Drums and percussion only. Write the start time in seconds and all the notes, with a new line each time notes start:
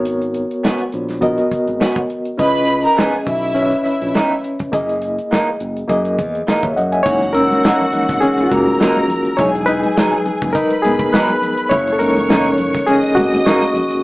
0.05 closed hi-hat
0.22 closed hi-hat
0.34 closed hi-hat
0.51 closed hi-hat
0.65 snare
0.79 closed hi-hat
0.92 closed hi-hat
1.09 snare, closed hi-hat
1.22 kick, closed hi-hat
1.38 closed hi-hat
1.51 kick, closed hi-hat
1.67 closed hi-hat
1.81 snare
1.95 kick, closed hi-hat
2.10 closed hi-hat
2.25 closed hi-hat
2.39 kick, closed hi-hat
2.55 closed hi-hat
2.68 closed hi-hat
2.85 closed hi-hat
2.99 snare
3.13 closed hi-hat
3.26 kick, closed hi-hat
3.43 closed hi-hat
3.56 closed hi-hat
3.71 closed hi-hat
3.86 closed hi-hat
4.02 closed hi-hat
4.15 snare
4.29 closed hi-hat
4.44 closed hi-hat
4.59 kick, closed hi-hat
4.73 kick, closed hi-hat
4.89 closed hi-hat
5.02 closed hi-hat
5.19 closed hi-hat
5.33 snare
5.47 closed hi-hat
5.60 closed hi-hat
5.77 closed hi-hat
5.89 kick, closed hi-hat
6.05 closed hi-hat
6.19 kick, closed hi-hat
6.35 closed hi-hat
6.48 snare
6.63 kick, closed hi-hat
6.77 closed hi-hat
6.92 closed hi-hat
7.06 kick, closed hi-hat, muted conga
7.22 closed hi-hat, muted conga
7.35 closed hi-hat
7.51 closed hi-hat, high conga
7.65 snare, muted conga
7.79 closed hi-hat, low conga
7.93 closed hi-hat, low conga
8.09 kick, snare, closed hi-hat
8.22 closed hi-hat, muted conga
8.38 closed hi-hat, muted conga
8.52 kick, closed hi-hat, high conga
8.67 closed hi-hat, high conga
8.81 snare, muted conga
8.95 closed hi-hat, muted conga, high conga
9.08 closed hi-hat, low conga
9.25 closed hi-hat
9.38 kick, closed hi-hat, muted conga
9.55 closed hi-hat, muted conga
9.67 closed hi-hat
9.83 closed hi-hat, high conga
9.98 snare, muted conga
10.12 closed hi-hat, low conga
10.25 closed hi-hat, low conga
10.42 kick, closed hi-hat
10.55 kick, closed hi-hat, muted conga
10.70 closed hi-hat, muted conga
10.85 closed hi-hat, high conga
10.99 kick, closed hi-hat, high conga
11.14 snare, muted conga
11.28 closed hi-hat, muted conga, high conga
11.42 closed hi-hat, low conga
11.57 closed hi-hat
11.71 kick, closed hi-hat, muted conga
11.87 closed hi-hat, muted conga
12.00 closed hi-hat
12.16 closed hi-hat, high conga
12.30 snare
12.45 closed hi-hat, muted conga, low conga
12.58 closed hi-hat, low conga
12.74 kick, snare, closed hi-hat
12.87 closed hi-hat, muted conga
13.03 closed hi-hat
13.17 kick, closed hi-hat, high conga
13.33 closed hi-hat, high conga
13.47 snare, muted conga
13.61 closed hi-hat, high conga
13.74 closed hi-hat, low conga
13.90 closed hi-hat